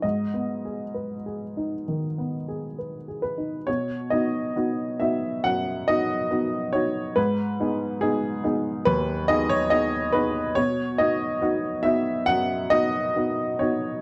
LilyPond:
\new Staff \with { instrumentName = "Upright piano" } { \time 4/4 \key b \major \tempo 4 = 69 << { dis''2. r8 b'8 | cis''8 dis''4 e''8 fis''8 dis''4 cis''8 | b'4 gis'4 b'8 dis''16 cis''16 dis''8 b'8 | cis''8 dis''4 e''8 fis''8 dis''4 cis''8 | } \\ { \tuplet 3/2 { gis,8 b8 gis'8 b'8 gis'8 dis'8 dis8 b8 gis'8 b'8 gis'8 dis'8 } | b,8 <b dis' fis'>8 <b dis' fis'>8 <b dis' fis'>8 fis,8 <b dis' fis'>8 <b dis' fis'>8 <b dis' fis'>8 | gis,8 <b dis' gis'>8 <b dis'>8 <b dis' gis'>8 dis,8 <b dis' gis'>8 <b dis' gis'>8 <b dis' gis'>8 | b,8 <b dis' fis'>8 <b dis' fis'>8 <b dis' fis'>8 fis,8 <b dis' fis'>8 <b dis' fis'>8 <b dis' fis'>8 | } >> }